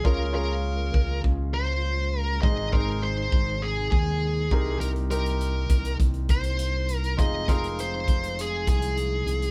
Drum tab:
HH |----------------|----------------|xxxxx-xxxxxxx-xx|x-xxx-xxx-xxx-xx|
BD |o-----o-o-------|o-o---o---o---o-|------o-o-o-----|o-o---o---o-----|